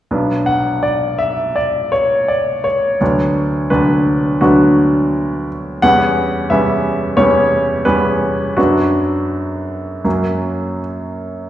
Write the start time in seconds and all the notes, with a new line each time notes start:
0.11 B1 F#3 B3 D4
0.46 F#5
0.83 D5
1.18 E5
1.56 D5
1.92 C#5
2.28 D5
2.64 C#5
3.01 D2 F#3 B3 D4
3.70 D2 F#3 B3 D4 B4
4.41 D2 F#3 B3 D4 F#4
5.82 E2 G3 B3 C#4 F#5
6.50 E2 G3 B3 C#4 E5
7.17 E2 G3 B3 C#4 C#5
7.85 E2 G3 B3 C#4 B4
8.57 F#2 F#3 B3 D4 F#4
10.04 F#2 F#3 A#3 C#4